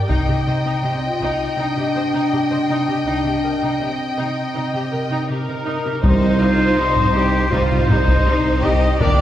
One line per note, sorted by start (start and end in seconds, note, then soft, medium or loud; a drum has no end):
0.09 0.27 C2 soft
0.09 0.17 C3 soft
0.09 0.27 D#4 medium
0.09 0.80 D#4 medium
0.09 5.25 D#5 medium
0.09 5.25 G5 medium
0.09 taiko medium
0.27 0.35 C3 soft
0.27 0.36 G4 soft
0.46 0.53 C3 soft
0.46 0.55 C5 soft
0.64 0.72 C3 medium
0.64 0.83 D#4 soft
0.83 0.90 C3 soft
0.83 1.08 C4 medium
0.83 0.93 G4 soft
1.08 1.33 F4 medium
1.20 1.28 C3 medium
1.20 1.39 D#4 medium
1.20 taiko soft
1.33 1.58 D#4 soft
1.57 1.65 C3 soft
1.57 3.05 D4 medium
1.57 1.75 D#4 soft
1.77 1.84 C3 soft
1.77 1.84 G4 soft
1.95 2.03 C3 soft
1.95 2.02 C5 soft
2.13 2.21 C3 soft
2.13 2.31 D#4 soft
2.32 2.40 C3 soft
2.32 2.40 G4 soft
2.51 2.58 C3 soft
2.51 2.58 C5 soft
2.69 2.77 C3 soft
2.69 2.87 D#4 soft
2.88 2.95 C3 soft
2.88 2.95 G4 soft
3.06 3.24 C2 soft
3.06 3.14 C3 soft
3.06 3.79 D4 medium
3.06 3.24 D#4 soft
3.25 3.32 C3 soft
3.25 3.33 G4 soft
3.44 3.51 C3 soft
3.44 3.51 A#4 soft
3.62 3.70 C3 soft
3.62 3.79 D#4 soft
3.79 3.88 C3 soft
3.79 5.66 C4 soft
3.79 3.87 G4 soft
4.18 4.26 C3 soft
4.18 4.35 D#4 soft
4.55 4.63 C3 soft
4.55 4.72 D#4 soft
4.74 4.81 C3 soft
4.74 4.81 G4 soft
4.92 5.00 C3 soft
4.92 5.00 A#4 soft
5.10 5.18 C3 soft
5.10 5.28 D#4 soft
5.29 5.37 C3 soft
5.29 5.99 D#4 soft
5.29 5.37 G4 soft
5.29 5.99 A#4 medium
5.29 6.00 A#4 soft
5.48 5.56 C3 soft
5.48 5.56 A#4 soft
5.66 5.74 C3 soft
5.66 5.83 D#4 soft
5.85 5.93 C3 soft
5.85 5.93 G4 soft
6.03 6.69 C2 medium
6.03 7.11 C3 medium
6.03 6.30 D#3 medium
6.03 6.12 G3 medium
6.03 6.12 D#4 medium
6.03 7.49 D#4 medium
6.03 6.38 D#4 medium
6.03 6.30 G4 medium
6.03 7.49 C5 medium
6.03 7.50 C5 medium
6.03 taiko medium
6.40 6.48 G3 soft
6.40 6.48 D#4 soft
6.40 6.78 F4 medium
6.77 7.43 C2 medium
6.77 6.86 G3 soft
6.77 7.15 D#4 medium
6.77 6.86 D#4 soft
6.96 taiko low-mid soft
7.15 7.23 G3 medium
7.15 7.23 D#4 medium
7.15 7.51 G4 medium
7.51 8.17 C2 medium
7.51 8.18 C2 medium
7.51 7.79 D#3 medium
7.51 7.60 G3 soft
7.51 8.61 D#4 medium
7.51 7.61 D#4 soft
7.51 7.89 F4 medium
7.51 7.79 G4 medium
7.51 8.61 C5 medium
7.51 taiko medium
7.71 taiko low-mid medium
7.89 7.99 G3 soft
7.89 9.00 D#4 medium
7.89 7.99 D#4 soft
7.89 taiko low-mid medium
8.08 taiko medium
8.26 8.92 C2 medium
8.26 8.35 G3 medium
8.26 8.35 D#4 medium
8.62 8.71 G3 soft
8.62 8.72 D#4 medium
8.62 8.98 G4 medium
8.62 9.00 D#5 medium
8.62 taiko medium
8.99 9.21 G1 medium
8.99 9.21 D3 medium
8.99 9.08 A#3 medium
8.99 9.08 D4 medium
8.99 9.21 D4 medium
8.99 9.21 G4 medium
8.99 9.21 A#4 medium
8.99 9.21 D5 medium
8.99 9.21 D5 loud
8.99 taiko medium